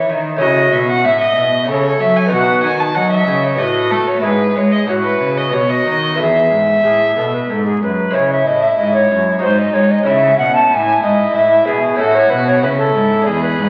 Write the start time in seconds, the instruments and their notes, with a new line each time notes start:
Already playing: lute A3 C#4 E4, recorder E5
0.09 cello D#3, lute D#3
0.36 lute A3 C#4 E4, violin D#5
0.40 cello C#3, lute C#3, recorder F#4
0.72 cello B2, lute B2, violin E5
0.90 violin F#5
1.04 cello A2, lute A2, recorder E5, violin E5
1.21 violin D#5
1.36 cello B2, lute B2
1.64 lute A3 F#4
1.68 cello C#3, lute C#3, recorder A4, violin C#5
1.99 lute F#3, cello F#3, violin E5
2.17 violin G#5
2.26 lute B3 D#4 F#4
2.31 lute B2, cello B2, recorder F#4, violin F#5
2.63 lute D#3, cello D#3, violin G#5
2.80 violin A5
2.95 lute F#3, cello F#3, recorder D#5, violin F#5
3.11 violin E5
3.27 cello C#3, lute C#3
3.44 violin C#5
3.55 lute B3 F#4, recorder G4
3.59 lute A2, cello A2, violin D#5
3.63 recorder F#4
3.91 cello A3, lute A3, violin A4
4.07 violin C#5
4.20 cello G#2, lute B3 E4 G#4, recorder G#4, violin B4
4.24 lute G#2
4.55 cello G#3, lute G#3, violin C#5
4.72 violin D#5
4.86 cello A2, lute A2 E4 F#4, recorder F#4, violin C#5
5.03 violin B4
5.20 cello C#3, lute C#3
5.38 violin D#5
5.49 lute B2 B3 F#4, cello B2, recorder G4
5.54 recorder F#4, violin C#5
5.70 violin D#5
5.85 lute D#3, cello D#3
6.13 lute G#3 B3 E4
6.18 lute E2, cello E2, recorder A4, violin E5
6.22 recorder G#4
6.50 lute G#2, cello G#2
6.84 lute A2, cello A2, recorder G#4
7.16 lute B2, cello B2, recorder A4
7.34 recorder B4
7.49 cello G#2, lute G#2, recorder A4
7.66 recorder G#4
7.82 cello F#2, lute F#2, recorder B4
8.11 lute G#3 C#4 E4, violin E4, recorder C#5
8.15 cello C#3, lute C#3
8.31 recorder E5
8.46 cello A2, lute A2, recorder D#5
8.62 recorder E5
8.78 cello G#2, lute G#2, recorder D#5
8.94 recorder C#5
9.11 lute F#2, cello F#2
9.39 lute G#3 D#4 F#4, recorder C5
9.43 lute G#2, cello G#2, violin D#4
9.59 recorder D#5
9.73 lute G#3, cello G#3, recorder C#5
9.91 recorder D#5
10.03 lute G#3 C#4 E4, violin C#4, recorder E5
10.07 lute C#3, cello C#3
10.38 lute B2, cello B2, recorder F#5
10.55 recorder A5
10.70 lute A2, cello A2, violin E4, recorder A5
10.74 recorder G#5
11.03 cello G#2, lute G#2, recorder D#5
11.35 lute A2, cello A2, recorder E5
11.65 lute B2, cello B2, recorder G#4
11.95 lute A3 C#4 E4, recorder A4
11.99 lute A2, cello A2, violin F#4
12.15 recorder C#5
12.30 cello B2, lute B2, recorder B4
12.46 recorder C#5
12.62 cello C#3, lute C#3, violin E4, recorder B4
12.78 recorder A4
12.94 lute G#2, cello G#2
13.22 lute G#3 D4 E4
13.26 lute E2, cello E2, recorder G#4, violin G#4
13.42 recorder B4
13.58 lute G#2, cello G#2